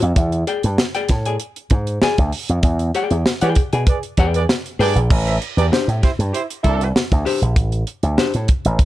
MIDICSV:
0, 0, Header, 1, 6, 480
1, 0, Start_track
1, 0, Tempo, 616016
1, 129, Time_signature, 4, 2, 24, 8
1, 6896, End_track
2, 0, Start_track
2, 0, Title_t, "Hollow-body jazz guitar"
2, 0, Program_c, 0, 26
2, 368, Note_on_c, 0, 68, 72
2, 370, Note_on_c, 0, 74, 75
2, 377, Note_on_c, 0, 79, 85
2, 479, Note_off_c, 0, 68, 0
2, 480, Note_off_c, 0, 74, 0
2, 483, Note_off_c, 0, 79, 0
2, 738, Note_on_c, 0, 79, 85
2, 746, Note_on_c, 0, 74, 83
2, 750, Note_on_c, 0, 68, 62
2, 836, Note_off_c, 0, 79, 0
2, 839, Note_off_c, 0, 74, 0
2, 841, Note_off_c, 0, 68, 0
2, 983, Note_on_c, 0, 80, 64
2, 988, Note_on_c, 0, 74, 60
2, 993, Note_on_c, 0, 68, 49
2, 1057, Note_off_c, 0, 80, 0
2, 1060, Note_off_c, 0, 74, 0
2, 1062, Note_off_c, 0, 68, 0
2, 1573, Note_on_c, 0, 68, 98
2, 1578, Note_on_c, 0, 74, 103
2, 1584, Note_on_c, 0, 80, 108
2, 1683, Note_off_c, 0, 68, 0
2, 1685, Note_off_c, 0, 74, 0
2, 1688, Note_off_c, 0, 80, 0
2, 2296, Note_on_c, 0, 68, 86
2, 2300, Note_on_c, 0, 74, 94
2, 2306, Note_on_c, 0, 79, 97
2, 2457, Note_off_c, 0, 68, 0
2, 2459, Note_off_c, 0, 74, 0
2, 2462, Note_off_c, 0, 79, 0
2, 2661, Note_on_c, 0, 79, 96
2, 2667, Note_on_c, 0, 74, 88
2, 2672, Note_on_c, 0, 68, 79
2, 2814, Note_off_c, 0, 79, 0
2, 2817, Note_off_c, 0, 74, 0
2, 2819, Note_off_c, 0, 68, 0
2, 2905, Note_on_c, 0, 80, 64
2, 2909, Note_on_c, 0, 74, 59
2, 2915, Note_on_c, 0, 68, 50
2, 2980, Note_off_c, 0, 80, 0
2, 2982, Note_off_c, 0, 74, 0
2, 2985, Note_off_c, 0, 68, 0
2, 3260, Note_on_c, 0, 68, 79
2, 3265, Note_on_c, 0, 74, 96
2, 3269, Note_on_c, 0, 79, 97
2, 3420, Note_off_c, 0, 68, 0
2, 3422, Note_off_c, 0, 74, 0
2, 3424, Note_off_c, 0, 79, 0
2, 3735, Note_on_c, 0, 68, 91
2, 3740, Note_on_c, 0, 74, 90
2, 3746, Note_on_c, 0, 79, 114
2, 3845, Note_off_c, 0, 68, 0
2, 3848, Note_off_c, 0, 74, 0
2, 3851, Note_off_c, 0, 79, 0
2, 4457, Note_on_c, 0, 62, 75
2, 4464, Note_on_c, 0, 67, 82
2, 4469, Note_on_c, 0, 72, 97
2, 4566, Note_off_c, 0, 62, 0
2, 4570, Note_off_c, 0, 67, 0
2, 4572, Note_off_c, 0, 72, 0
2, 5651, Note_on_c, 0, 62, 85
2, 5657, Note_on_c, 0, 67, 95
2, 5663, Note_on_c, 0, 72, 93
2, 5762, Note_off_c, 0, 62, 0
2, 5765, Note_off_c, 0, 67, 0
2, 5768, Note_off_c, 0, 72, 0
2, 6371, Note_on_c, 0, 62, 86
2, 6377, Note_on_c, 0, 67, 89
2, 6382, Note_on_c, 0, 72, 98
2, 6481, Note_off_c, 0, 62, 0
2, 6484, Note_off_c, 0, 67, 0
2, 6487, Note_off_c, 0, 72, 0
2, 6896, End_track
3, 0, Start_track
3, 0, Title_t, "Horn section"
3, 0, Program_c, 1, 61
3, 2664, Note_on_c, 1, 68, 71
3, 2667, Note_on_c, 1, 74, 88
3, 2669, Note_on_c, 1, 71, 79
3, 2735, Note_off_c, 1, 68, 0
3, 2738, Note_off_c, 1, 74, 0
3, 2739, Note_off_c, 1, 71, 0
3, 3022, Note_on_c, 1, 68, 70
3, 3023, Note_on_c, 1, 71, 77
3, 3023, Note_on_c, 1, 74, 89
3, 3101, Note_off_c, 1, 68, 0
3, 3102, Note_off_c, 1, 71, 0
3, 3102, Note_off_c, 1, 74, 0
3, 3394, Note_on_c, 1, 74, 92
3, 3399, Note_on_c, 1, 71, 92
3, 3400, Note_on_c, 1, 68, 83
3, 3462, Note_off_c, 1, 74, 0
3, 3466, Note_off_c, 1, 68, 0
3, 3466, Note_off_c, 1, 71, 0
3, 3742, Note_on_c, 1, 71, 102
3, 3743, Note_on_c, 1, 74, 115
3, 3745, Note_on_c, 1, 68, 91
3, 3893, Note_off_c, 1, 71, 0
3, 3894, Note_off_c, 1, 74, 0
3, 3895, Note_off_c, 1, 68, 0
3, 4106, Note_on_c, 1, 64, 78
3, 4107, Note_on_c, 1, 72, 74
3, 4108, Note_on_c, 1, 76, 79
3, 4173, Note_off_c, 1, 64, 0
3, 4174, Note_off_c, 1, 72, 0
3, 4175, Note_off_c, 1, 76, 0
3, 4344, Note_on_c, 1, 67, 88
3, 4345, Note_on_c, 1, 71, 87
3, 4346, Note_on_c, 1, 74, 107
3, 4411, Note_off_c, 1, 67, 0
3, 4412, Note_off_c, 1, 71, 0
3, 4413, Note_off_c, 1, 74, 0
3, 4690, Note_on_c, 1, 64, 77
3, 4695, Note_on_c, 1, 67, 73
3, 4695, Note_on_c, 1, 72, 85
3, 4768, Note_off_c, 1, 64, 0
3, 4771, Note_off_c, 1, 67, 0
3, 4772, Note_off_c, 1, 72, 0
3, 4930, Note_on_c, 1, 72, 91
3, 4932, Note_on_c, 1, 67, 76
3, 4933, Note_on_c, 1, 64, 80
3, 5008, Note_off_c, 1, 72, 0
3, 5009, Note_off_c, 1, 67, 0
3, 5010, Note_off_c, 1, 64, 0
3, 5170, Note_on_c, 1, 64, 115
3, 5170, Note_on_c, 1, 69, 120
3, 5171, Note_on_c, 1, 62, 113
3, 5364, Note_off_c, 1, 62, 0
3, 5364, Note_off_c, 1, 64, 0
3, 5364, Note_off_c, 1, 69, 0
3, 6896, End_track
4, 0, Start_track
4, 0, Title_t, "Slap bass"
4, 0, Program_c, 2, 36
4, 18, Note_on_c, 2, 41, 99
4, 115, Note_off_c, 2, 41, 0
4, 127, Note_on_c, 2, 40, 106
4, 337, Note_off_c, 2, 40, 0
4, 499, Note_on_c, 2, 43, 97
4, 596, Note_off_c, 2, 43, 0
4, 853, Note_on_c, 2, 45, 87
4, 1061, Note_off_c, 2, 45, 0
4, 1333, Note_on_c, 2, 44, 95
4, 1541, Note_off_c, 2, 44, 0
4, 1701, Note_on_c, 2, 38, 89
4, 1799, Note_off_c, 2, 38, 0
4, 1942, Note_on_c, 2, 41, 84
4, 2040, Note_off_c, 2, 41, 0
4, 2051, Note_on_c, 2, 40, 111
4, 2261, Note_off_c, 2, 40, 0
4, 2420, Note_on_c, 2, 40, 86
4, 2519, Note_off_c, 2, 40, 0
4, 2667, Note_on_c, 2, 52, 89
4, 2763, Note_off_c, 2, 52, 0
4, 2907, Note_on_c, 2, 47, 88
4, 3003, Note_off_c, 2, 47, 0
4, 3254, Note_on_c, 2, 40, 98
4, 3463, Note_off_c, 2, 40, 0
4, 3735, Note_on_c, 2, 43, 98
4, 3846, Note_off_c, 2, 43, 0
4, 3860, Note_on_c, 2, 34, 93
4, 3959, Note_off_c, 2, 34, 0
4, 3979, Note_on_c, 2, 33, 107
4, 4186, Note_off_c, 2, 33, 0
4, 4340, Note_on_c, 2, 40, 79
4, 4439, Note_off_c, 2, 40, 0
4, 4582, Note_on_c, 2, 45, 91
4, 4680, Note_off_c, 2, 45, 0
4, 4823, Note_on_c, 2, 43, 85
4, 4920, Note_off_c, 2, 43, 0
4, 5176, Note_on_c, 2, 36, 80
4, 5383, Note_off_c, 2, 36, 0
4, 5546, Note_on_c, 2, 38, 92
4, 5642, Note_off_c, 2, 38, 0
4, 5779, Note_on_c, 2, 34, 78
4, 5894, Note_off_c, 2, 34, 0
4, 5894, Note_on_c, 2, 33, 108
4, 6101, Note_off_c, 2, 33, 0
4, 6257, Note_on_c, 2, 38, 88
4, 6356, Note_off_c, 2, 38, 0
4, 6503, Note_on_c, 2, 45, 100
4, 6599, Note_off_c, 2, 45, 0
4, 6742, Note_on_c, 2, 33, 100
4, 6838, Note_off_c, 2, 33, 0
4, 6896, End_track
5, 0, Start_track
5, 0, Title_t, "Muted slap bass strokes"
5, 1572, Note_on_c, 9, 29, 42
5, 1650, Note_off_c, 9, 29, 0
5, 2538, Note_on_c, 9, 29, 45
5, 2616, Note_off_c, 9, 29, 0
5, 4453, Note_on_c, 9, 29, 42
5, 4531, Note_off_c, 9, 29, 0
5, 6896, End_track
6, 0, Start_track
6, 0, Title_t, "Drums"
6, 16, Note_on_c, 9, 42, 54
6, 93, Note_off_c, 9, 42, 0
6, 126, Note_on_c, 9, 42, 114
6, 127, Note_on_c, 9, 36, 125
6, 204, Note_off_c, 9, 42, 0
6, 205, Note_off_c, 9, 36, 0
6, 252, Note_on_c, 9, 42, 50
6, 330, Note_off_c, 9, 42, 0
6, 368, Note_on_c, 9, 42, 71
6, 446, Note_off_c, 9, 42, 0
6, 494, Note_on_c, 9, 42, 55
6, 572, Note_off_c, 9, 42, 0
6, 610, Note_on_c, 9, 38, 110
6, 688, Note_off_c, 9, 38, 0
6, 737, Note_on_c, 9, 42, 59
6, 814, Note_off_c, 9, 42, 0
6, 846, Note_on_c, 9, 42, 85
6, 848, Note_on_c, 9, 38, 38
6, 853, Note_on_c, 9, 36, 84
6, 924, Note_off_c, 9, 42, 0
6, 926, Note_off_c, 9, 38, 0
6, 931, Note_off_c, 9, 36, 0
6, 978, Note_on_c, 9, 42, 56
6, 1056, Note_off_c, 9, 42, 0
6, 1088, Note_on_c, 9, 42, 89
6, 1166, Note_off_c, 9, 42, 0
6, 1217, Note_on_c, 9, 42, 55
6, 1295, Note_off_c, 9, 42, 0
6, 1324, Note_on_c, 9, 42, 76
6, 1331, Note_on_c, 9, 36, 80
6, 1402, Note_off_c, 9, 42, 0
6, 1409, Note_off_c, 9, 36, 0
6, 1457, Note_on_c, 9, 42, 55
6, 1535, Note_off_c, 9, 42, 0
6, 1571, Note_on_c, 9, 38, 124
6, 1649, Note_off_c, 9, 38, 0
6, 1698, Note_on_c, 9, 42, 54
6, 1702, Note_on_c, 9, 36, 90
6, 1776, Note_off_c, 9, 42, 0
6, 1780, Note_off_c, 9, 36, 0
6, 1811, Note_on_c, 9, 46, 91
6, 1889, Note_off_c, 9, 46, 0
6, 1940, Note_on_c, 9, 42, 57
6, 2018, Note_off_c, 9, 42, 0
6, 2048, Note_on_c, 9, 42, 113
6, 2051, Note_on_c, 9, 36, 124
6, 2126, Note_off_c, 9, 42, 0
6, 2129, Note_off_c, 9, 36, 0
6, 2176, Note_on_c, 9, 42, 54
6, 2254, Note_off_c, 9, 42, 0
6, 2295, Note_on_c, 9, 42, 71
6, 2373, Note_off_c, 9, 42, 0
6, 2419, Note_on_c, 9, 42, 46
6, 2497, Note_off_c, 9, 42, 0
6, 2538, Note_on_c, 9, 38, 109
6, 2616, Note_off_c, 9, 38, 0
6, 2660, Note_on_c, 9, 42, 59
6, 2737, Note_off_c, 9, 42, 0
6, 2769, Note_on_c, 9, 42, 89
6, 2777, Note_on_c, 9, 36, 89
6, 2847, Note_off_c, 9, 42, 0
6, 2854, Note_off_c, 9, 36, 0
6, 2904, Note_on_c, 9, 42, 55
6, 2982, Note_off_c, 9, 42, 0
6, 3013, Note_on_c, 9, 42, 90
6, 3014, Note_on_c, 9, 36, 95
6, 3091, Note_off_c, 9, 42, 0
6, 3092, Note_off_c, 9, 36, 0
6, 3140, Note_on_c, 9, 42, 54
6, 3218, Note_off_c, 9, 42, 0
6, 3252, Note_on_c, 9, 42, 84
6, 3255, Note_on_c, 9, 36, 77
6, 3330, Note_off_c, 9, 42, 0
6, 3333, Note_off_c, 9, 36, 0
6, 3384, Note_on_c, 9, 42, 61
6, 3462, Note_off_c, 9, 42, 0
6, 3501, Note_on_c, 9, 38, 127
6, 3579, Note_off_c, 9, 38, 0
6, 3630, Note_on_c, 9, 42, 55
6, 3708, Note_off_c, 9, 42, 0
6, 3744, Note_on_c, 9, 46, 91
6, 3822, Note_off_c, 9, 46, 0
6, 3869, Note_on_c, 9, 42, 54
6, 3947, Note_off_c, 9, 42, 0
6, 3978, Note_on_c, 9, 36, 127
6, 3980, Note_on_c, 9, 49, 108
6, 4056, Note_off_c, 9, 36, 0
6, 4058, Note_off_c, 9, 49, 0
6, 4106, Note_on_c, 9, 42, 53
6, 4184, Note_off_c, 9, 42, 0
6, 4222, Note_on_c, 9, 42, 71
6, 4300, Note_off_c, 9, 42, 0
6, 4350, Note_on_c, 9, 42, 53
6, 4428, Note_off_c, 9, 42, 0
6, 4465, Note_on_c, 9, 38, 100
6, 4543, Note_off_c, 9, 38, 0
6, 4589, Note_on_c, 9, 42, 52
6, 4666, Note_off_c, 9, 42, 0
6, 4700, Note_on_c, 9, 42, 79
6, 4702, Note_on_c, 9, 36, 92
6, 4702, Note_on_c, 9, 38, 38
6, 4778, Note_off_c, 9, 42, 0
6, 4780, Note_off_c, 9, 36, 0
6, 4780, Note_off_c, 9, 38, 0
6, 4830, Note_on_c, 9, 42, 58
6, 4908, Note_off_c, 9, 42, 0
6, 4944, Note_on_c, 9, 42, 86
6, 5022, Note_off_c, 9, 42, 0
6, 5068, Note_on_c, 9, 42, 63
6, 5146, Note_off_c, 9, 42, 0
6, 5176, Note_on_c, 9, 42, 81
6, 5178, Note_on_c, 9, 36, 80
6, 5254, Note_off_c, 9, 42, 0
6, 5256, Note_off_c, 9, 36, 0
6, 5308, Note_on_c, 9, 42, 59
6, 5386, Note_off_c, 9, 42, 0
6, 5422, Note_on_c, 9, 38, 119
6, 5500, Note_off_c, 9, 38, 0
6, 5546, Note_on_c, 9, 36, 91
6, 5546, Note_on_c, 9, 42, 56
6, 5624, Note_off_c, 9, 36, 0
6, 5624, Note_off_c, 9, 42, 0
6, 5660, Note_on_c, 9, 46, 92
6, 5738, Note_off_c, 9, 46, 0
6, 5786, Note_on_c, 9, 42, 60
6, 5864, Note_off_c, 9, 42, 0
6, 5893, Note_on_c, 9, 36, 127
6, 5894, Note_on_c, 9, 42, 115
6, 5971, Note_off_c, 9, 36, 0
6, 5972, Note_off_c, 9, 42, 0
6, 6016, Note_on_c, 9, 42, 58
6, 6094, Note_off_c, 9, 42, 0
6, 6132, Note_on_c, 9, 42, 70
6, 6210, Note_off_c, 9, 42, 0
6, 6257, Note_on_c, 9, 42, 53
6, 6335, Note_off_c, 9, 42, 0
6, 6374, Note_on_c, 9, 38, 110
6, 6452, Note_off_c, 9, 38, 0
6, 6497, Note_on_c, 9, 42, 60
6, 6575, Note_off_c, 9, 42, 0
6, 6609, Note_on_c, 9, 42, 87
6, 6614, Note_on_c, 9, 36, 98
6, 6687, Note_off_c, 9, 42, 0
6, 6692, Note_off_c, 9, 36, 0
6, 6739, Note_on_c, 9, 42, 62
6, 6817, Note_off_c, 9, 42, 0
6, 6849, Note_on_c, 9, 36, 99
6, 6849, Note_on_c, 9, 42, 90
6, 6896, Note_off_c, 9, 36, 0
6, 6896, Note_off_c, 9, 42, 0
6, 6896, End_track
0, 0, End_of_file